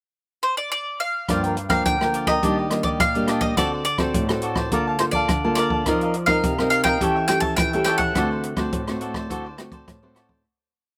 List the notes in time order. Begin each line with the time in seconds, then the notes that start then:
0.43 C5
0.57 D5
0.72 D5
1.00 F5
1.28 G2 F3 A#3 D4 F4 A#4 D5 G5, kick, cross-stick, closed hi-hat
1.43 A#4 D5 G5, closed hi-hat
1.56 muted cavaquinho stroke, closed hi-hat
1.69 F3 A#3 D4 A#4 D5 F5 G5, kick, cross-stick
1.86 D3 G5, kick, closed hi-hat
2.00 F3 A#3 D4 A#4 D5 G5, cross-stick
2.14 F4 A#4 D5 G5, closed hi-hat
2.27 A#4 D5 D#5 G5, kick, cross-stick
2.43 D#3 G3 A#3 D4 G4 D5 D#5, kick, closed hi-hat
2.57 G4 D5 D#5
2.70 G3 A#3 D4, muted cavaquinho stroke, cross-stick, closed hi-hat
2.83 G4 D5 D#5, kick
3.00 A#2 F5, kick, cross-stick, closed hi-hat
3.14 G3 A#3 D4 G4 D5 D#5, closed hi-hat
3.28 D4 G4 D5 D#5, cross-stick, closed hi-hat
3.41 G4 D5 D#5, kick, closed hi-hat
3.57 D3 C4 F#4 A4 C5 D5, kick, cross-stick, closed hi-hat
3.72 A4 C5 D5
3.85 D5, muted cavaquinho stroke, closed hi-hat
3.98 C4 F#4 A4 C5 D5, kick, cross-stick, closed hi-hat
4.14 A2, kick, closed hi-hat
4.29 C4 F#4 A4 C5 D5, cross-stick, closed hi-hat
4.42 F#4 A4 C5 D5, closed hi-hat
4.55 A4 C5 D5, kick, cross-stick
4.71 D3 A#3 F4 A4 A#4 D5 F5 A5, kick, closed hi-hat
4.87 D5 F5 A5
4.99 A#3 F4 A4 C5, muted cavaquinho stroke, cross-stick, closed hi-hat
5.11 D5 A5, kick, closed hi-hat
5.16 D5 F5
5.29 D3, kick, cross-stick, closed hi-hat
5.44 A#3 F4 A4 D5 F5 A5
5.55 A#4 D5, cross-stick, closed hi-hat
5.59 F5 A5
5.70 D5 F5 A5, kick
5.86 F3 C4 D#4 F4 A#4 D#5 F5, kick, cross-stick, closed hi-hat
6.01 D#5 F5, closed hi-hat
6.05 A#4
6.14 muted cavaquinho stroke, closed hi-hat
6.26 C4 D#4 A#4 D#5 F5, kick, cross-stick
6.31 A#4
6.43 C3, kick, closed hi-hat
6.59 C4 D#4 A#4 D#5 F5, cross-stick
6.70 F4 A#4 D#5 F5, closed hi-hat
6.74 F5
6.84 D#5 F5 G5, kick, cross-stick
6.88 A#4
7.01 E3 C#4 G4 A4 C#5 E5, kick, closed hi-hat
7.16 A4 C#5 E5
7.28 C#4 G4 A4 G5, muted cavaquinho stroke, cross-stick, closed hi-hat
7.40 C#5 E5 A5, kick
7.45 A4
7.57 E3 G5, kick, cross-stick, closed hi-hat
7.73 C#4 G4 A4 C#5 E5, closed hi-hat
7.84 G4 A4 C#5 G5, cross-stick, closed hi-hat
7.89 E5
7.98 C#5 E5 F#5, kick, closed hi-hat
8.02 A4
8.15 D3 A3 C4 F#4 A4 C5 D5, kick, cross-stick, closed hi-hat
8.32 A4 C5
8.43 muted cavaquinho stroke, closed hi-hat
8.57 A3 C4 F#4 A4 C5 D5, kick, cross-stick, closed hi-hat
8.72 A2, kick, closed hi-hat
8.88 A3 C4 F#4 A4 C5 D5, cross-stick, closed hi-hat
9.01 F#4 A4 C5 D5, closed hi-hat
9.14 A4 C5 D5, kick, cross-stick
9.30 D3 A3 C4 F#4 A4 C5 D5, kick, closed hi-hat
9.44 A4 C5 D5
9.57 A3 C4 F#4, muted cavaquinho stroke, cross-stick, closed hi-hat
9.72 A4 C5 D5, kick, closed hi-hat
9.88 A2, kick, cross-stick, closed hi-hat
10.02 A3 C4 F#4 A4 C5 D5
10.15 F#4 A4 C5 D5, cross-stick, closed hi-hat
10.29 A4 C5 D5, kick